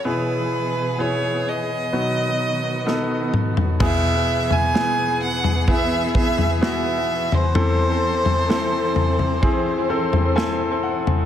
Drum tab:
CC |----------------|x---------------|----------------|
SD |------------o---|----o-------o---|----o-------o---|
T2 |--------------o-|----------------|----------------|
FT |---------------o|o--o---o---o---o|o--o--oo---o---o|
BD |----------------|o-------o-o-----|--------o-------|